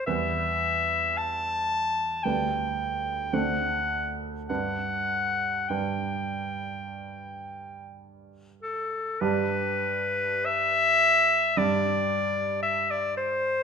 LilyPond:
<<
  \new Staff \with { instrumentName = "Clarinet" } { \time 4/4 \key g \major \tempo 4 = 52 e''4 a''4 g''4 fis''8. r16 | fis''4 g''2 r8 a'8 | b'4 e''4 d''4 e''16 d''16 c''8 | }
  \new Staff \with { instrumentName = "Grand piano" } { \time 4/4 \key g \major <e, g b b'>2 <d, g d' b'>4 <d, a d' c''>4 | <g, g d' b'>4 <g, g d' b'>2. | <g, g d' g'>2 <g, g d' g'>2 | }
>>